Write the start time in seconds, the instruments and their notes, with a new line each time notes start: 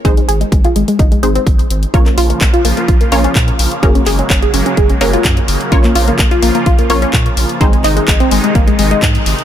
0.05 analog synth bass G#1, synth pluck G#3 C4 D#4 G#4 C5, synth arpeggio sound G#4, kick, closed hi-hat
0.17 synth arpeggio sound G#3, closed hi-hat
0.28 analog synth bass G#1, synth arpeggio sound G#4, closed hi-hat
0.41 synth arpeggio sound G#3, closed hi-hat
0.52 analog synth bass G#1, synth arpeggio sound G#3, kick, closed hi-hat
0.65 synth arpeggio sound F4, closed hi-hat
0.76 analog synth bass G#1, synth arpeggio sound G#3, closed hi-hat
0.88 synth arpeggio sound G#3, closed hi-hat
0.99 analog synth bass G#1, synth arpeggio sound D#4, kick, closed hi-hat
1.12 synth arpeggio sound G#3, closed hi-hat
1.23 analog synth bass G#1, synth pluck G#3 C4 D#4 G#4 C5, synth arpeggio sound G#3, closed hi-hat
1.35 synth arpeggio sound C4, closed hi-hat
1.47 analog synth bass G#1, kick, closed hi-hat
1.59 closed hi-hat
1.70 analog synth bass G#1, closed hi-hat
1.83 closed hi-hat
1.94 analog synth bass A#1, supersaw synth C#3 F3 A#3 F4, synth pluck A#3 C#4 F4 A#4 C#5, synth arpeggio sound F4, kick, closed hi-hat
2.06 synth arpeggio sound A#3, clap, closed hi-hat
2.18 analog synth bass A#1, synth arpeggio sound F4, open hi-hat
2.30 synth arpeggio sound A#3, closed hi-hat
2.41 analog synth bass A#1, synth arpeggio sound A#3, kick, clap, closed hi-hat
2.54 synth arpeggio sound F4, closed hi-hat
2.65 analog synth bass A#1, synth arpeggio sound A#3, open hi-hat
2.77 synth arpeggio sound A#3, closed hi-hat
2.88 analog synth bass A#1, synth arpeggio sound F4, kick, closed hi-hat
3.01 synth arpeggio sound A#3, closed hi-hat
3.12 analog synth bass A#1, synth arpeggio sound A#3, synth pluck A#3 C#4 F4 A#4 C#5, open hi-hat
3.24 synth arpeggio sound C#4, closed hi-hat
3.35 analog synth bass A#2, kick, clap, closed hi-hat
3.48 closed hi-hat
3.59 analog synth bass A#1, open hi-hat
3.72 closed hi-hat
3.83 analog synth bass F#1, supersaw synth C#3 F#3 G#3, synth pluck A#3 C#4 F#4 G#4 A#4, synth arpeggio sound G#4, kick, closed hi-hat
3.95 synth arpeggio sound C#4, closed hi-hat
4.06 analog synth bass F#1, synth arpeggio sound G#4, clap, open hi-hat
4.19 synth arpeggio sound C#4, closed hi-hat
4.30 analog synth bass F#1, synth arpeggio sound C#4, kick, clap, closed hi-hat
4.42 synth arpeggio sound G#4, closed hi-hat
4.54 analog synth bass F#1, synth arpeggio sound C#4, open hi-hat
4.66 synth arpeggio sound C#4, closed hi-hat
4.77 analog synth bass F#1, synth arpeggio sound G#4, kick, closed hi-hat
4.90 synth arpeggio sound C#4, closed hi-hat
5.01 analog synth bass F#1, synth pluck A#3 C#4 F#4 G#4 A#4, synth arpeggio sound C#4, open hi-hat
5.13 synth arpeggio sound F4, closed hi-hat
5.25 analog synth bass F#2, kick, clap, closed hi-hat
5.37 closed hi-hat
5.48 analog synth bass F#1, open hi-hat
5.61 closed hi-hat
5.72 analog synth bass A#1, supersaw synth F3 F4, synth pluck A#3 C#4 F4 A#4 C#5, synth arpeggio sound F4, kick, closed hi-hat
5.84 synth arpeggio sound A#3, clap, closed hi-hat
5.95 analog synth bass A#1, synth arpeggio sound F4, open hi-hat
6.08 synth arpeggio sound A#3, closed hi-hat
6.19 analog synth bass A#1, synth arpeggio sound A#3, kick, clap, closed hi-hat
6.31 synth arpeggio sound F4, closed hi-hat
6.42 analog synth bass A#1, synth arpeggio sound A#3, open hi-hat
6.55 synth arpeggio sound A#3, closed hi-hat
6.66 analog synth bass A#1, synth arpeggio sound F4, kick, closed hi-hat
6.79 synth arpeggio sound A#3, closed hi-hat
6.90 analog synth bass A#1, synth arpeggio sound A#3, synth pluck A#3 C#4 F4 A#4 C#5, open hi-hat
7.02 synth arpeggio sound C#4, closed hi-hat
7.13 analog synth bass A#2, kick, clap, closed hi-hat
7.26 closed hi-hat
7.37 analog synth bass A#1, open hi-hat
7.49 closed hi-hat
7.61 analog synth bass G#1, supersaw synth C3 D#3 G#3 D#4, synth pluck G#3 C4 D#4 G#4 C5, synth arpeggio sound D#4, kick, closed hi-hat
7.73 synth arpeggio sound G#3, closed hi-hat
7.84 analog synth bass G#1, synth arpeggio sound D#4, clap, open hi-hat
7.97 synth arpeggio sound G#3, closed hi-hat
8.08 analog synth bass G#1, synth arpeggio sound G#3, kick, clap, closed hi-hat
8.20 synth arpeggio sound C4, closed hi-hat
8.31 analog synth bass G#1, synth arpeggio sound G#3, open hi-hat
8.44 synth arpeggio sound G#3, closed hi-hat
8.55 analog synth bass G#1, synth arpeggio sound A#3, kick, closed hi-hat
8.68 synth arpeggio sound G#3, closed hi-hat
8.79 analog synth bass G#1, synth arpeggio sound G#3, open hi-hat
8.91 synth arpeggio sound G#3, closed hi-hat
9.02 analog synth bass G#2, kick, clap, closed hi-hat
9.15 closed hi-hat
9.26 analog synth bass G#1, open hi-hat
9.39 closed hi-hat